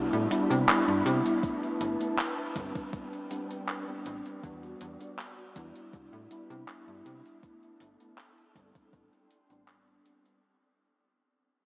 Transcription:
Already playing: tine electric piano G3 B3 D4 E4, string machine E4 B5
0.13 fm bass A2, closed hi-hat
0.30 tine electric piano G3 B3 D4 E4, closed hi-hat
0.50 fm bass C3, closed hi-hat
0.69 clap, closed hi-hat
0.87 fm bass G2, tine electric piano G3 B3 D4 E4, closed hi-hat
1.05 fm bass C3, closed hi-hat
1.26 closed hi-hat
1.43 tine electric piano A3 B3 D4 E4, string machine B4 A5, kick, closed hi-hat
1.63 closed hi-hat
1.81 fm bass G1, closed hi-hat
1.99 tine electric piano A3 B3 D4 E4, closed hi-hat
2.18 clap, closed hi-hat
2.38 closed hi-hat
2.55 fm bass G1, tine electric piano G3 B3 C4 D4, kick, closed hi-hat
2.76 kick, closed hi-hat
2.93 string machine D4 G5, kick, closed hi-hat
3.13 closed hi-hat
3.30 tine electric piano G3 B3 C4 D4, closed hi-hat
3.51 closed hi-hat
3.68 clap, closed hi-hat
3.87 tine electric piano G3 B3 C4 D4, closed hi-hat
4.06 fm bass A1, closed hi-hat
4.26 closed hi-hat
4.43 fm bass E2, tine electric piano G3 B3 D4 F#4, string machine F#4 D5, kick, closed hi-hat
4.63 closed hi-hat
4.81 fm bass E2, closed hi-hat
5.00 tine electric piano G3 B3 D4 F#4, closed hi-hat
5.19 clap, closed hi-hat
5.38 closed hi-hat
5.55 fm bass E2, tine electric piano G3 B3 D4 E4, kick, closed hi-hat
5.76 closed hi-hat
5.93 fm bass C2, string machine E4 B5, kick, closed hi-hat
6.13 fm bass A2, closed hi-hat
6.30 tine electric piano G3 B3 D4 E4, closed hi-hat
6.50 fm bass C3, closed hi-hat
6.68 clap, closed hi-hat
6.87 fm bass G2, tine electric piano G3 B3 D4 E4, closed hi-hat
7.06 fm bass C3, closed hi-hat
7.26 closed hi-hat
7.42 tine electric piano A3 B3 D4 E4, string machine A4 A5, kick, closed hi-hat
7.63 closed hi-hat
7.80 fm bass G1, closed hi-hat
7.99 tine electric piano A3 B3 D4 E4, closed hi-hat
8.18 clap, closed hi-hat
8.38 closed hi-hat
8.55 fm bass G1, tine electric piano G3 B3 C4 D4, kick, closed hi-hat
8.75 kick, closed hi-hat
8.93 fm bass A1, string machine D4 G5 C6, kick, closed hi-hat
9.13 closed hi-hat
9.31 closed hi-hat
9.49 fm bass A1, tine electric piano G3 B3 C4 D4, closed hi-hat
9.68 clap, closed hi-hat
9.88 closed hi-hat
10.05 tine electric piano G3 B3 C4 D4, closed hi-hat
10.26 closed hi-hat

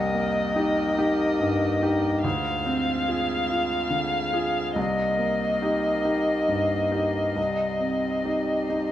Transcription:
Already playing: grand piano C2, harmonium A#3 G4 D#5, violin D#5
0.14 grand piano A#3
0.56 grand piano D#4 G4
0.98 grand piano D#4 G4
1.40 grand piano G2
1.83 grand piano D#4 G4
2.23 grand piano D2, harmonium G#3 F4 C5, violin F5
2.66 grand piano C4
3.07 grand piano F4 G#4
3.49 grand piano F4 G#4
3.90 grand piano D3
4.33 grand piano F4 G#4
4.76 grand piano C2, harmonium A#3 D#4, violin D#5
5.18 grand piano A#3
5.62 grand piano D#4 G4
6.05 grand piano D#4 G4
6.48 grand piano G2
6.91 grand piano D#4 G4
7.36 grand piano C2, harmonium G3 C5
7.80 grand piano C4
8.25 grand piano D#4 G4
8.70 grand piano D#4 G4

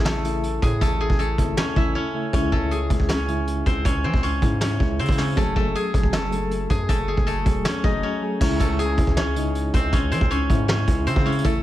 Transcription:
Already playing: 808-style bass A1, synth keys C#3 A3 E4, guzheng C#4 G#4 C#5 G#5
0.05 guzheng A3 A4, snare, closed hi-hat
0.24 synth keys C#3 A3 E4, closed hi-hat
0.43 closed hi-hat
0.62 808-style bass A2, guzheng G#4 G#5, kick, closed hi-hat
0.81 808-style bass A1, guzheng A3 A4, kick, closed hi-hat
1.01 guzheng G#4 G#5
1.10 808-style bass A1, kick
1.19 guzheng A3 A4, closed hi-hat
1.37 808-style bass G#1, synth keys C#3 A3 E4, kick, closed hi-hat
1.57 guzheng C#4 C#5, snare, closed hi-hat
1.76 808-style bass A1, synth keys C#3 A3 E4, guzheng E4 E5, kick
1.95 guzheng C#4 C#5
2.14 synth keys C#3 A3 E4
2.33 808-style bass C#2, synth keys C#3 G#3 E4, guzheng C#4 C#5, kick, closed hi-hat
2.52 808-style bass C#2, guzheng A3 A4, kick
2.71 guzheng G#4 G#5, closed hi-hat
2.89 808-style bass C#2, synth keys C#3 G#3 E4, kick, closed hi-hat
3.00 kick
3.09 guzheng C#4 C#5, snare, closed hi-hat
3.27 synth keys C#3 G#3 E4, closed hi-hat
3.47 closed hi-hat
3.66 808-style bass C#2, guzheng C4 C5, kick, closed hi-hat
3.85 808-style bass C#2, guzheng C#4 C#5, kick, closed hi-hat
4.04 808-style bass E3, guzheng C4 C5
4.14 808-style bass C#2, kick
4.23 guzheng C#4 C#5, closed hi-hat
4.41 808-style bass G#2, synth keys C#3 G#3 E4, kick, closed hi-hat
4.61 guzheng C#4 C#5, snare, closed hi-hat
4.79 808-style bass C#2, synth keys C#3 G#3 E4, kick
4.99 808-style bass C#3, guzheng C4 C5, closed hi-hat
5.05 808-style bass C#3, kick, closed hi-hat
5.12 closed hi-hat
5.17 synth keys C#3 G#3 C4, guzheng C#4 C#5, snare, open hi-hat
5.36 808-style bass F#1, synth keys F#3 A3 G#4, guzheng A3 A4, kick, closed hi-hat
5.56 808-style bass F#1, guzheng A3 A4, kick
5.75 guzheng G#4 G#5, closed hi-hat
5.93 808-style bass F#1, synth keys F#3 A3 A4, kick, closed hi-hat
6.03 kick
6.13 guzheng A3 A4, snare, closed hi-hat
6.31 synth keys F#3 A3 A4, closed hi-hat
6.51 closed hi-hat
6.70 808-style bass F#2, guzheng G#4 G#5, kick, closed hi-hat
6.89 808-style bass F#1, guzheng A3 A4, kick, closed hi-hat
7.08 guzheng G#4 G#5
7.17 808-style bass F#1, kick
7.27 guzheng A3 A4, closed hi-hat
7.45 808-style bass E1, synth keys F#3 A3 G#4, kick, closed hi-hat
7.65 guzheng C#4 C#5, snare, closed hi-hat
7.83 808-style bass F#1, synth keys F#3 A3 G#4, guzheng D#4 D#5, kick
8.03 guzheng C#4 C#5
8.21 synth keys F#3 A3 G#4
8.40 808-style bass C#2, synth keys C#3 G#3 E4, guzheng C#4 C#5, kick, crash
8.60 808-style bass C#2, guzheng A3 A4, kick, closed hi-hat
8.79 guzheng G#4 G#5, closed hi-hat
8.97 808-style bass C#2, synth keys C#3 G#3 E4, kick, closed hi-hat
9.07 kick
9.17 guzheng C#4 C#5, snare
9.35 synth keys C#3 G#3 D#4, closed hi-hat
9.55 closed hi-hat
9.74 808-style bass C#2, guzheng C4 C5, kick, closed hi-hat
9.93 808-style bass C#2, guzheng C#4 C#5, kick, closed hi-hat
10.12 808-style bass E3, guzheng C4 C5, closed hi-hat
10.21 808-style bass C#2, kick
10.31 guzheng C#4 C#5, closed hi-hat
10.49 808-style bass G#2, synth keys C#3 G#3 E4, kick, closed hi-hat
10.68 guzheng C#4 C#5, snare
10.87 808-style bass C#2, synth keys C#3 G#3 E4, kick, closed hi-hat
11.07 808-style bass C#3, guzheng C4 C5, closed hi-hat
11.16 808-style bass C#3, kick
11.25 synth keys C#3 G#3 E4, guzheng C#4 C#5, closed hi-hat
11.32 closed hi-hat
11.38 closed hi-hat
11.44 808-style bass A1, synth keys C#3 A3 E4, guzheng A3 A4, kick, closed hi-hat

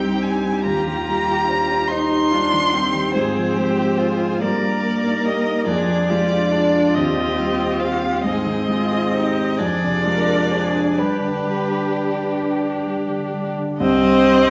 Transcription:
Already playing: grand piano C2 G2 G3 G4 C5, viola C4, violin D#4 G5, cello G4
0.05 grand piano G2
0.23 grand piano G3, violin G#5
0.45 grand piano G2
0.63 grand piano D#2, viola F4, violin G4 A#5
0.87 grand piano D#3
1.06 grand piano G3, violin G4
1.28 grand piano G4
1.47 violin D4, grand piano C5
1.71 grand piano G4
1.88 cello D#4, violin D#4 C6, viola D#4, grand piano C5
2.11 grand piano G4
2.31 grand piano G3, viola D4, cello F4
2.54 grand piano D#3
2.74 grand piano G3, viola C4, cello G4
2.95 grand piano D#3
3.14 grand piano G#2, violin F4 C5, cello G#4
3.37 grand piano F3
3.56 grand piano G#3, violin G4, cello G4
3.79 grand piano F4
3.98 cello F4, violin G#4, grand piano C5
4.20 grand piano F4
4.41 grand piano G2, viola A#3, violin A#4 D5, cello A#4
4.63 grand piano G3
4.83 grand piano A#3
5.06 grand piano D#4
5.25 grand piano G4, violin D#5
5.46 grand piano D#4
5.66 grand piano F2, viola D4, violin F4 D5, cello G#4
5.88 grand piano F3
6.09 grand piano G#3, viola F4, cello G4
6.31 grand piano D4
6.52 viola D4, cello F4, grand piano G#4
6.74 grand piano D4
6.94 grand piano D#2, viola C4, violin G4 D#5
7.18 grand piano D#3
7.39 grand piano G3
7.59 grand piano C4
7.80 grand piano C5, violin F5
8.01 grand piano C4
8.24 grand piano G#2, viola C4, cello D#4, violin G#4 D#5
8.46 grand piano D#3
8.68 grand piano G#3, cello F4, violin G#4
8.93 grand piano C4
9.14 violin D#4, cello G4, grand piano C5
9.38 grand piano C4
9.58 grand piano F2, viola D4, violin F4 D5, cello G#4
9.84 grand piano C3
10.05 grand piano G#3, cello A#4
10.27 grand piano D4
10.51 cello G#4, grand piano C5
10.74 grand piano D4
10.98 grand piano G2, viola D4, cello G4, violin G4 B4
11.22 grand piano D3
11.46 grand piano G3
11.69 grand piano D4
11.92 grand piano B4
12.15 grand piano D4
12.40 grand piano B4
12.86 grand piano G3
13.09 grand piano D3
13.33 grand piano G3
13.58 grand piano D3
13.78 grand piano C2, cello C4, viola C4, violin C5 D#5
14.04 grand piano G2
14.25 grand piano G3

